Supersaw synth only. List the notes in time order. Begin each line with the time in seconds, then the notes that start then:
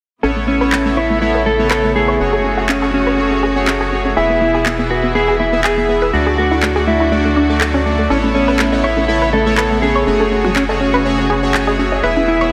0.23 B3 E4 A4 C#5
0.61 B3 E4 A4 C#5
0.85 B3 E4 A4 C#5
1.22 B3 E4 A4 C#5
1.59 B3 E4 A4 C#5
1.95 B3 E4 A4 C#5
2.20 A3 F#4 G#4 C#5
2.58 A3 F#4 G#4 C#5
2.82 A3 F#4 G#4 C#5
3.18 A3 F#4 G#4 C#5
3.56 A3 F#4 G#4 C#5
3.92 A3 F#4 G#4 C#5
4.17 B3 E4 G#4 E5
4.54 B3 E4 G#4 E5
4.79 B3 E4 G#4 E5
5.15 B3 E4 G#4 E5
5.53 B3 E4 G#4 E5
5.89 B3 E4 G#4 E5
6.13 A3 D4 F#4 D5
6.51 A3 D4 F#4 D5
6.76 A3 D4 F#4 D5
7.12 A3 D4 F#4 D5
7.49 A3 D4 F#4 D5
7.86 A3 D4 F#4 D5
8.10 B3 E4 A4 C#5
8.48 B3 E4 A4 C#5
8.72 B3 E4 A4 C#5
9.08 B3 E4 A4 C#5
9.46 B3 E4 A4 C#5
9.82 B3 E4 A4 C#5
10.07 A3 F#4 G#4 C#5
10.44 A3 F#4 G#4 C#5
10.69 A3 F#4 G#4 C#5
11.05 A3 F#4 G#4 C#5
11.43 A3 F#4 G#4 C#5
11.79 A3 F#4 G#4 C#5
12.04 B3 E4 G#4 E5
12.41 B3 E4 G#4 E5